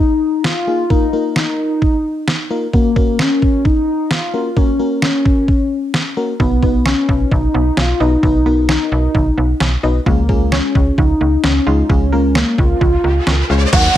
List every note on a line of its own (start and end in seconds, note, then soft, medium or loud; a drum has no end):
0.00 0.44 D#4 loud
0.44 0.92 F4 loud
0.44 snare loud
0.67 0.84 A#3 medium
0.67 0.84 D#4 medium
0.67 0.84 F4 medium
0.67 0.84 G#4 medium
0.90 1.07 A#3 medium
0.90 1.35 D#4 loud
0.90 1.07 D#4 medium
0.90 1.07 F4 medium
0.90 1.07 A#4 medium
0.90 kick loud
1.13 1.79 A#3 medium
1.13 1.79 D#4 medium
1.13 1.79 F4 medium
1.13 1.79 A#4 medium
1.36 2.47 D#4 loud
1.36 snare loud
1.82 kick medium
2.28 snare loud
2.50 2.67 A#3 medium
2.50 2.67 D#4 medium
2.50 2.67 F4 medium
2.50 2.67 A#4 medium
2.73 2.90 A#3 medium
2.73 3.21 A#3 medium
2.73 2.90 C#4 medium
2.73 2.90 F#4 medium
2.73 2.90 A#4 medium
2.73 kick loud
2.96 3.62 A#3 medium
2.96 3.62 C#4 medium
2.96 3.62 F#4 medium
2.96 3.62 A#4 medium
2.96 kick medium
3.19 3.67 C#4 loud
3.19 snare loud
3.42 kick medium
3.65 4.12 D#4 loud
3.65 kick medium
4.11 4.56 F4 loud
4.11 snare loud
4.34 4.50 A#3 medium
4.34 4.50 C#4 medium
4.34 4.50 F#4 medium
4.34 4.50 A#4 medium
4.57 4.73 A#3 medium
4.57 4.99 C#4 loud
4.57 4.73 C#4 medium
4.57 4.73 F#4 medium
4.57 4.73 A#4 medium
4.57 kick loud
4.79 5.45 A#3 medium
4.79 5.45 C#4 medium
4.79 5.45 F#4 medium
4.79 5.45 A#4 medium
5.02 6.13 C#4 medium
5.02 snare loud
5.25 kick medium
5.48 kick medium
5.94 snare loud
6.17 6.33 A#3 medium
6.17 6.33 C#4 medium
6.17 6.33 F#4 medium
6.17 6.33 A#4 medium
6.40 6.94 B1 loud
6.40 6.54 D#3 medium
6.40 6.82 B3 medium
6.40 6.56 B3 medium
6.40 6.56 D#4 medium
6.40 6.56 F#4 medium
6.40 6.56 B4 medium
6.40 kick loud
6.63 6.77 B3 medium
6.63 7.28 B3 medium
6.63 7.28 D#4 medium
6.63 7.28 F#4 medium
6.63 7.28 B4 medium
6.63 kick medium
6.86 7.00 C#4 medium
6.86 7.33 C#4 medium
6.86 snare loud
7.09 7.25 B1 loud
7.09 kick medium
7.31 7.48 B1 loud
7.31 7.46 D#3 medium
7.31 7.78 D#4 loud
7.31 kick medium
7.54 7.70 B1 loud
7.54 7.68 B3 medium
7.77 7.93 B1 loud
7.77 7.91 C#4 medium
7.77 8.01 F4 loud
7.77 snare loud
8.00 8.16 B1 loud
8.00 8.17 B3 medium
8.00 8.68 D#4 loud
8.00 8.14 D#4 medium
8.00 8.17 D#4 medium
8.00 8.17 F#4 medium
8.00 8.17 B4 medium
8.23 8.77 B1 loud
8.23 8.37 D#3 medium
8.23 8.40 B3 medium
8.23 8.40 D#4 medium
8.23 8.40 F#4 medium
8.23 8.40 B4 medium
8.23 kick loud
8.46 9.11 B3 medium
8.46 8.60 B3 medium
8.46 9.11 D#4 medium
8.46 9.11 F#4 medium
8.46 9.11 A#4 medium
8.69 8.83 C#4 medium
8.69 9.79 D#4 loud
8.69 snare loud
8.92 9.08 B1 loud
9.15 9.31 B1 loud
9.15 9.29 D#3 medium
9.15 kick medium
9.38 9.54 B1 loud
9.38 9.52 B3 medium
9.60 9.77 B1 loud
9.60 9.75 C#4 medium
9.60 snare loud
9.83 9.99 B1 medium
9.83 10.00 B3 medium
9.83 10.00 D#4 medium
9.83 9.98 D#4 medium
9.83 10.00 F#4 medium
9.83 10.00 B4 medium
10.06 10.61 C#2 loud
10.06 10.20 F3 medium
10.06 10.23 G#3 medium
10.06 10.54 A#3 medium
10.06 10.23 C#4 medium
10.06 10.23 F4 medium
10.06 10.23 G#4 medium
10.06 kick loud
10.29 10.95 G#3 medium
10.29 10.43 A#3 medium
10.29 10.95 C#4 medium
10.29 10.95 F4 medium
10.29 10.95 G#4 medium
10.29 kick medium
10.52 11.00 C#4 medium
10.52 10.66 C#4 medium
10.52 snare loud
10.75 10.91 C#2 medium
10.75 kick medium
10.98 11.14 C#2 loud
10.98 11.12 F3 medium
10.98 11.43 D#4 loud
10.98 kick medium
11.21 11.37 C#2 medium
11.21 11.35 A#3 medium
11.44 11.60 C#2 loud
11.44 11.58 C#4 medium
11.44 11.68 C#4 loud
11.44 snare loud
11.67 11.83 C#2 loud
11.67 11.83 G#3 medium
11.67 11.83 C#4 medium
11.67 11.91 D#4 loud
11.67 11.81 F4 medium
11.67 11.83 F4 medium
11.67 11.83 G#4 medium
11.89 12.44 C#2 loud
11.89 12.04 F3 medium
11.89 12.06 G#3 medium
11.89 12.37 C#4 loud
11.89 12.06 C#4 medium
11.89 12.06 F4 medium
11.89 12.06 G#4 medium
11.89 kick loud
11.89 riser medium
12.12 12.78 G#3 medium
12.12 12.27 A#3 medium
12.12 12.78 C#4 medium
12.12 12.78 F4 medium
12.12 12.78 A#4 medium
12.35 12.60 A#3 loud
12.35 12.49 C#4 medium
12.35 snare loud
12.58 12.74 C#2 loud
12.58 13.50 F4 loud
12.58 kick medium
12.81 12.97 C#2 loud
12.81 12.95 F3 medium
12.81 kick medium
13.04 13.20 C#2 medium
13.04 13.18 A#3 medium
13.27 13.43 C#2 loud
13.27 13.41 C#4 medium
13.27 snare loud
13.50 13.66 C#2 medium
13.50 13.66 G#3 medium
13.50 13.66 C#4 medium
13.50 13.64 F4 medium
13.50 13.66 F4 medium
13.50 13.66 G#4 medium
13.73 13.89 D#2 loud
13.73 13.97 D#3 medium
13.73 13.87 F#3 loud
13.73 13.89 A#3 medium
13.73 13.97 D#4 medium
13.73 13.89 D#4 medium
13.73 13.97 F#4 medium
13.73 13.89 F#4 medium
13.73 13.89 A#4 medium
13.73 13.97 A#4 medium
13.73 13.97 F#5 loud
13.73 kick loud
13.73 closed hi-hat medium
13.73 crash loud
13.73 downlifter medium
13.84 closed hi-hat medium